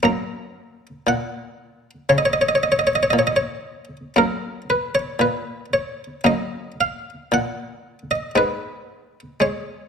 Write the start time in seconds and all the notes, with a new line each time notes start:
0.03 F#2 A#3 A#5
1.07 A#2 F#5
2.09 C#3 C#5
2.18 D#5
2.25 C#5
2.33 D#5
2.41 C#5
2.49 D#5
2.55 C#5
2.63 D#5
2.72 C#5
2.79 D#5
2.87 C#5
2.95 D#5
3.03 C#5
3.10 A#2 D#5
3.19 C#5
3.27 D#5
3.36 C#5
4.16 F#2 A#3 A#4
4.70 B4
4.95 C#5
5.19 A#2 B4
5.73 C#5
6.24 F#2 A#3 D#5
6.81 F5
7.32 A#2 F#5
8.11 D#5
8.35 G#2 G#3 B4
9.40 G#3 C#5